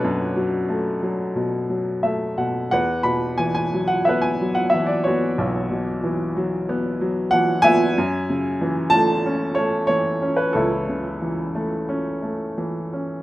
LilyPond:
<<
  \new Staff \with { instrumentName = "Upright piano" } { \time 4/4 \key fis \minor \tempo 4 = 91 << { b'4 r2 e''8 fis''8 | fis''8 b''8 gis''16 gis''8 fis''16 e''16 gis''8 fis''16 e''16 d''16 cis''8~ | cis''4 r2 fis''8 gis''8~ | gis''4. a''4 cis''8 cis''8. b'16 |
a'2. r4 | } \\ { d'4. r2 r8 | b'2 b'4. fis'8~ | fis'4. r2 e''8~ | e''4. r2 r8 |
e'2. r4 | } >> }
  \new Staff \with { instrumentName = "Upright piano" } { \clef bass \time 4/4 \key fis \minor <fis, b, fis a>8 fis8 a8 fis8 b,8 fis8 a8 b,8 | e,8 b,8 e8 fis8 b8 fis8 e8 b8 | b,,8 b,8 e8 fis8 b8 fis8 e8 b8 | fis,8 cis8 e8 a8 cis'8 a8 e8 cis'8 |
cis,8 cis8 e8 a8 cis'8 a8 e8 cis'8 | }
>>